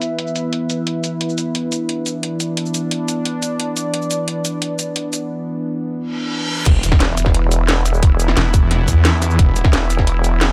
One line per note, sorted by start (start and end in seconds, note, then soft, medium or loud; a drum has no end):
0.00 6.62 E3 medium
0.00 6.62 B3 medium
0.00 1.17 E4 medium
0.00 5.30 E4 medium
0.00 5.30 B4 medium
0.00 3.13 E5 medium
0.00 closed hi-hat medium
0.00 shaker medium
0.19 closed hi-hat medium
0.27 shaker soft
0.36 closed hi-hat medium
0.36 shaker medium
0.53 closed hi-hat medium
0.70 closed hi-hat medium
0.70 shaker medium
0.87 closed hi-hat medium
1.04 closed hi-hat medium
1.04 shaker medium
1.21 6.62 D4 medium
1.21 closed hi-hat medium
1.29 shaker soft
1.38 closed hi-hat medium
1.38 shaker medium
1.55 closed hi-hat medium
1.72 closed hi-hat medium
1.72 shaker medium
1.89 closed hi-hat medium
2.06 closed hi-hat medium
2.06 shaker medium
2.23 closed hi-hat medium
2.40 closed hi-hat medium
2.40 shaker medium
2.57 closed hi-hat medium
2.66 shaker soft
2.74 closed hi-hat medium
2.74 shaker medium
2.91 closed hi-hat medium
3.03 5.30 D5 medium
3.08 closed hi-hat medium
3.08 shaker medium
3.25 closed hi-hat medium
3.42 closed hi-hat medium
3.42 shaker medium
3.60 closed hi-hat medium
3.77 closed hi-hat medium
3.77 shaker medium
3.94 closed hi-hat medium
4.02 shaker soft
4.11 closed hi-hat medium
4.11 shaker medium
4.28 closed hi-hat medium
4.45 closed hi-hat medium
4.45 shaker medium
4.62 closed hi-hat medium
4.79 closed hi-hat medium
4.79 shaker medium
4.96 closed hi-hat medium
5.13 closed hi-hat medium
5.13 shaker medium
5.98 reverse cymbal medium
6.66 6.99 E1 loud
6.66 10.52 E3 medium
6.66 10.52 B3 medium
6.66 10.52 E4 medium
6.66 kick loud
6.66 closed hi-hat loud
6.66 crash loud
6.66 impact medium
6.83 closed hi-hat medium
6.83 shaker medium
6.92 kick loud
6.92 snare medium
7.00 8.35 E1 loud
7.00 snare loud
7.00 closed hi-hat medium
7.17 closed hi-hat medium
7.17 shaker medium
7.26 kick medium
7.26 snare soft
7.34 closed hi-hat medium
7.51 closed hi-hat medium
7.51 shaker medium
7.64 10.52 E5 medium
7.69 snare loud
7.69 closed hi-hat loud
7.69 shaker soft
7.86 closed hi-hat medium
7.86 shaker medium
7.94 shaker soft
8.03 kick loud
8.03 closed hi-hat medium
8.20 closed hi-hat medium
8.20 shaker medium
8.28 snare medium
8.37 8.87 E1 loud
8.37 snare loud
8.37 closed hi-hat medium
8.54 kick loud
8.54 closed hi-hat medium
8.54 shaker medium
8.71 snare soft
8.71 closed hi-hat medium
8.88 9.38 E2 medium
8.88 kick medium
8.88 closed hi-hat medium
8.88 shaker medium
9.05 snare loud
9.05 closed hi-hat medium
9.05 shaker soft
9.22 snare soft
9.22 closed hi-hat medium
9.22 shaker medium
9.30 shaker soft
9.39 9.72 E1 loud
9.39 kick loud
9.39 closed hi-hat medium
9.56 closed hi-hat medium
9.56 shaker medium
9.65 kick loud
9.65 snare medium
9.73 10.52 E1 loud
9.73 snare loud
9.73 closed hi-hat medium
9.90 closed hi-hat medium
9.90 shaker medium
9.99 kick medium
9.99 snare soft
10.07 closed hi-hat medium
10.24 closed hi-hat medium
10.24 shaker medium
10.41 snare loud
10.41 closed hi-hat medium
10.41 shaker soft